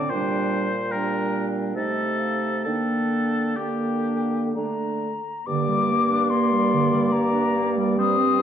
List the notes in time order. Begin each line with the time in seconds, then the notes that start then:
Already playing: D3 D5
0.08 A#2 C5 G5
0.12 G3 D4
0.90 G3 D4 A#4 G5
1.76 C3 A3 D#4 A4 D#5
2.20 F5
2.65 D3 A#3 D4 A4 G5
3.56 A#3 D4 G4 G5
4.55 D3 A3 D4 A#5
5.46 G2 D3 A#3 D5 D6
5.69 G3
5.92 A#3
6.10 D4
6.30 A#3 C6
6.52 G3
6.74 D3
6.93 G3
7.12 A#3 A#5
7.33 D4
7.55 A#3
7.77 G3
7.98 G3 C4 C5 D#6
8.18 C4
8.39 D#4